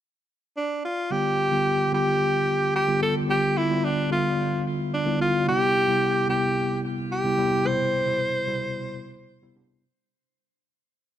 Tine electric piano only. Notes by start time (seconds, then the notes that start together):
1.10 D3 G3 B3 F4
1.51 D3 G3 B3 F4
1.92 D3 G3 B3 F4
2.87 D3 G3 B3 F4
3.01 D3 G3 B3 F4
3.28 D3 G3 B3 F4
3.69 D3 G3 B3 F4
4.10 D3 G3 B3 F4
5.05 D3 G3 B3 E4
5.20 D3 G3 B3 F4
5.47 C3 G3 B3 E4
5.88 C3 G3 B3 E4
6.29 C3 G3 B3 E4
7.24 C3 G3 B3 E4
7.38 C3 G3 B3 E4
7.65 B2 C3 G3 E4
8.06 B2 C3 G3 E4
8.47 B2 C3 G3 E4
9.42 C3 G3 B3 E4
9.56 C3 G3 B3 D4